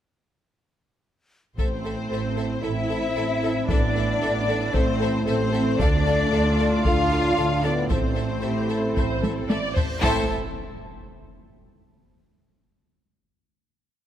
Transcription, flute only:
1.57 2.65 C5 soft
2.63 3.69 E5 medium
3.69 4.75 D5 medium
4.74 5.26 C5 medium
5.27 5.81 C5 medium
5.79 6.84 D5 medium
6.84 7.65 F5 medium
7.64 7.89 D5 medium
7.90 9.46 C5 medium
10.03 10.32 A5 medium

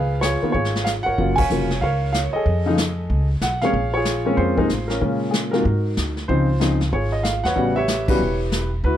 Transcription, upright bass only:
0.00 0.39 C#2 medium
0.43 muted upright bass stroke soft
0.54 1.03 G#1 medium
1.06 1.17 G#1 medium
1.18 1.48 F#1 medium
1.50 1.80 F1 medium
1.82 2.30 C#2 medium
2.34 muted upright bass stroke soft
2.46 3.06 F2 medium
3.10 3.39 C#2 medium
3.41 3.71 B1 medium
3.74 4.34 A#1 medium
4.37 4.67 F2 medium
4.69 4.99 A1 medium
5.01 5.62 A#2 medium
5.65 5.95 G#2 medium
5.97 6.27 D2 medium
6.29 6.89 C#2 medium
6.93 7.41 G#1 medium
7.45 7.56 E2 medium
7.56 8.17 A1 medium
8.20 8.80 E1 medium
8.84 8.97 D2 medium

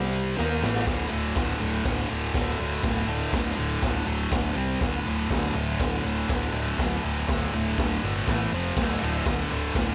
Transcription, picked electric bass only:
0.00 0.34 C2 loud
0.39 0.62 D#2 loud
0.63 0.86 A1 medium
0.87 1.05 D1 medium
1.12 1.30 D1 medium
1.36 1.55 D1 medium
1.62 1.80 D1 medium
1.85 2.04 D1 medium
2.11 2.29 D1 medium
2.35 2.53 D1 loud
2.60 2.78 D1 medium
2.84 3.02 D1 loud
3.07 3.26 D1 loud
3.33 3.52 D1 medium
3.58 3.77 D1 medium
3.83 4.01 D1 medium
4.07 4.26 D1 medium
4.32 4.50 D1 medium
4.56 4.75 C2 medium
4.81 5.00 D1 loud
5.07 5.25 D1 medium
5.30 5.49 D1 loud
5.55 5.74 D1 medium
5.80 5.98 D1 loud
6.05 6.23 D1 loud
6.29 6.48 D1 loud
6.53 6.72 D1 medium
6.79 6.97 D1 loud
7.05 7.23 D1 medium
7.29 7.47 D1 medium
7.54 7.72 D1 medium
7.78 7.96 D1 loud
8.04 8.21 G1 medium
8.28 8.46 A1 medium
8.53 8.71 F1 medium
8.77 8.95 D1 loud
9.03 9.20 D1 medium
9.26 9.44 D1 medium
9.51 9.69 D1 medium
9.75 9.93 D1 loud

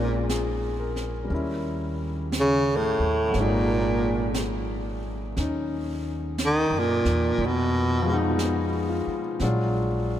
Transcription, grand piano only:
0.00 1.32 G#3 soft
0.00 1.32 C4 soft
0.00 1.29 C#4 soft
0.00 1.33 F4 soft
0.30 1.10 G#4 soft
0.79 1.26 A#4 soft
1.24 3.31 G3 soft
1.24 3.32 A#4 soft
1.30 3.34 C#4 soft
1.34 3.36 E4 soft
3.30 7.37 F#3 soft
3.30 7.39 A#3 soft
3.37 7.41 G#3 soft
3.37 5.38 D#4 soft
5.38 7.40 C#4 soft
5.38 7.41 D#4 soft
8.02 9.39 F3 medium
8.02 9.41 G#3 medium
8.10 9.43 B3 soft
8.10 9.45 D#4 medium
8.40 9.20 G#4 soft
8.89 9.42 F4 soft
9.42 10.20 F#3 medium
9.42 10.20 G#3 soft
9.42 10.20 D4 soft
9.42 10.20 F4 medium

